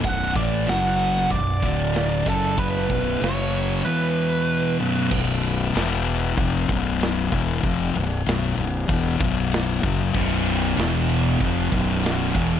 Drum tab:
CC |----------------|----------------|x---------------|----------------|
RD |x-x-x-x-x-x-x-x-|x-x-x-x---------|--x-x-x-x-x-x-x-|x-x-x-x-x-x-x-x-|
SD |-o--o--o----o---|-o--o-----------|----o-------o---|----o-------o---|
BD |o-o-----o-o---o-|o-o-------------|o-------o-o---o-|o-------o-o---o-|

CC |x---------------|
RD |--x-x-x-x-x-x-x-|
SD |----o-------o---|
BD |o-------o-o---o-|